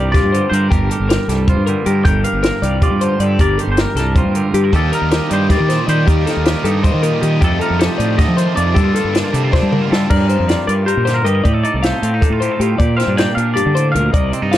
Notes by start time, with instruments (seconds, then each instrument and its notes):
Already playing: fingered electric bass C2, clean electric guitar G2 G3 G4 A#4 D5
0.12 clean electric guitar F4 G4 D5, kick, snare, closed hi-hat
0.23 fingered electric bass G2
0.32 clean electric guitar D3 G4 C5, closed hi-hat
0.49 fingered electric bass G2, clean electric guitar C5 D5, closed hi-hat
0.54 clean electric guitar A#4
0.68 fingered electric bass G1, clean electric guitar G2 G4 A#4, kick, closed hi-hat
0.73 clean electric guitar G4
0.90 clean electric guitar G4 A4, closed hi-hat
1.00 fingered electric bass G1
1.09 clean electric guitar G4 A#4, snare, closed hi-hat
1.28 fingered electric bass C2, clean electric guitar G3 G4 A4, snare, closed hi-hat
1.48 clean electric guitar F4 C5, kick, closed hi-hat
1.57 fingered electric bass G2
1.66 clean electric guitar D3 G4 A#4, closed hi-hat
1.86 fingered electric bass G2, clean electric guitar G4 A#4, closed hi-hat
2.05 fingered electric bass G1, clean electric guitar G2 A4 A#4 G5, kick, closed hi-hat
2.24 clean electric guitar G4 A#4 F5, closed hi-hat
2.33 fingered electric bass G1
2.43 clean electric guitar A#4, snare, closed hi-hat
2.62 fingered electric bass C2, clean electric guitar G3 G4 D5, closed hi-hat
2.82 clean electric guitar F4 G4 D5, kick, closed hi-hat
2.90 fingered electric bass G2
3.01 clean electric guitar D3 G4 C5, closed hi-hat
3.19 fingered electric bass G2, clean electric guitar G4 A4 D5, closed hi-hat
3.39 fingered electric bass G1, clean electric guitar G2 G4 A#4 D5, kick, closed hi-hat
3.58 clean electric guitar G4 A4 C5, closed hi-hat
3.67 fingered electric bass G1
3.71 clean electric guitar C5
3.77 clean electric guitar G4 A#4, snare, closed hi-hat
3.95 fingered electric bass C2, clean electric guitar G3 A4, snare, closed hi-hat
4.00 clean electric guitar G4
4.16 clean electric guitar F4 C5, kick, closed hi-hat
4.24 fingered electric bass G2
4.35 clean electric guitar D3 G4 A#4, closed hi-hat
4.54 fingered electric bass G2, clean electric guitar G4, closed hi-hat
4.64 clean electric guitar A#4
4.73 fingered electric bass D#2, overdriven electric guitar D#3 G3 A#3 D#4 G4, clean electric guitar D#3 G4 A4, kick, closed hi-hat
4.92 clean electric guitar D#4 A#4, closed hi-hat
5.02 fingered electric bass D#2
5.11 clean electric guitar G4 A#4, snare, closed hi-hat
5.30 fingered electric bass G2, clean electric guitar G3 D#4 C5 D5, closed hi-hat
5.49 overdriven electric guitar D#3 G3 A#3 D#4 G4, clean electric guitar C4 G4 D5, kick, snare, closed hi-hat
5.60 fingered electric bass D#3
5.69 clean electric guitar A#2 D#4 C5, snare, closed hi-hat
5.87 fingered electric bass D#3, clean electric guitar G4 C5 D5, closed hi-hat
6.07 fingered electric bass D#2, clean electric guitar D#3 G4 A#4, overdriven electric guitar D#3 G3 A#3 D#4, kick, closed hi-hat
6.11 overdriven electric guitar G4
6.26 clean electric guitar D#4 A4, snare, closed hi-hat
6.37 fingered electric bass D#2
6.45 clean electric guitar G4 A#4, snare, closed hi-hat
6.64 fingered electric bass G2, clean electric guitar G3 D#4 A4, closed hi-hat
6.83 overdriven electric guitar G3 A#3 D#4 G4, clean electric guitar C5, kick, closed hi-hat
6.88 overdriven electric guitar D#3
6.94 fingered electric bass D#3
7.03 clean electric guitar A#2 D#4 A#4, closed hi-hat
7.21 fingered electric bass D#3, clean electric guitar G4, closed hi-hat
7.41 overdriven electric guitar F2 C3 D#3 A3 D#4, fingered electric bass F2, clean electric guitar F3 G4 A4, kick, closed hi-hat
7.60 clean electric guitar D#4 A4 A#4, closed hi-hat
7.70 fingered electric bass F2
7.79 clean electric guitar G4 A4 C5, snare, closed hi-hat
7.98 fingered electric bass A2, clean electric guitar A3 D#4 D5, closed hi-hat
8.17 overdriven electric guitar F2 C3 D#3, clean electric guitar D3 G4 D#5, kick, snare, closed hi-hat
8.21 overdriven electric guitar A3 D#4
8.28 fingered electric bass F3
8.37 clean electric guitar D#3 C5, closed hi-hat
8.56 fingered electric bass F2, clean electric guitar F3 D5, closed hi-hat
8.74 clean electric guitar G2 D4 G4 A4, overdriven electric guitar G2 D3 G3, fingered electric bass G2, kick, closed hi-hat
8.78 overdriven electric guitar A#3 D4
8.84 clean electric guitar F4
8.95 clean electric guitar F4 A4, closed hi-hat
9.04 fingered electric bass G2
9.13 clean electric guitar D4 A#4, snare, closed hi-hat
9.24 clean electric guitar F4
9.33 fingered electric bass C3, clean electric guitar G3 D4 A4, closed hi-hat
9.44 clean electric guitar F4
9.52 overdriven electric guitar G2 D3 G3 A#3 D4, clean electric guitar D4 C5, kick, snare
9.62 fingered electric bass G3
9.72 clean electric guitar D3 D4 A#4, mid tom
9.82 clean electric guitar F4
9.90 fingered electric bass G3, clean electric guitar G4 A4, snare
10.09 clean electric guitar G2 D4 A#4 D5, fingered electric bass G2, kick, crash
10.21 clean electric guitar F4
10.29 clean electric guitar F4 C5, closed hi-hat
10.40 fingered electric bass F2
10.48 clean electric guitar G3 F4 D5, snare, closed hi-hat
10.67 fingered electric bass G2, clean electric guitar F4 A#4 D5, closed hi-hat
10.86 clean electric guitar G4 A#4 C5, closed hi-hat
10.97 fingered electric bass A#2
11.05 clean electric guitar D3 G4 C5, snare, closed hi-hat
11.14 clean electric guitar A#4
11.24 fingered electric bass G2, clean electric guitar G4 A#4 D#5, closed hi-hat
11.35 clean electric guitar A#4
11.43 clean electric guitar A2 G4 D5, fingered electric bass A2, kick, closed hi-hat
11.53 clean electric guitar A4
11.63 clean electric guitar D#4 D5 D#5, closed hi-hat
11.74 fingered electric bass C2, clean electric guitar D5
11.83 clean electric guitar A3 A4 C5 F5, snare, closed hi-hat
12.02 fingered electric bass A2, clean electric guitar C4 F5, closed hi-hat
12.14 clean electric guitar D#4
12.21 clean electric guitar D4 A4, kick, closed hi-hat
12.30 fingered electric bass A2, clean electric guitar F4
12.40 clean electric guitar A2 G4 C5, closed hi-hat
12.51 clean electric guitar A4
12.60 fingered electric bass A2, clean electric guitar F4 G4, closed hi-hat
12.78 fingered electric bass A#2, clean electric guitar A#2 G4 D5, kick, closed hi-hat
12.97 clean electric guitar C4 C5 F5, closed hi-hat
13.01 snare
13.07 fingered electric bass G2, clean electric guitar D4
13.17 clean electric guitar A#3 G4 D5 G5, snare, closed hi-hat
13.35 fingered electric bass A#2, clean electric guitar D4 A#4 F5, closed hi-hat
13.54 clean electric guitar G2 G4 D5, closed hi-hat
13.66 fingered electric bass D3
13.75 clean electric guitar A2 C5, closed hi-hat
13.92 fingered electric bass D2, clean electric guitar A#2 A#4 F5, closed hi-hat
14.11 fingered electric bass C2, clean electric guitar C3 A#4 D5 D#5, kick, closed hi-hat
14.30 clean electric guitar C4 D5 D#5, closed hi-hat
14.42 fingered electric bass G2, clean electric guitar D#4
14.51 clean electric guitar G3 G4 F5, snare, closed hi-hat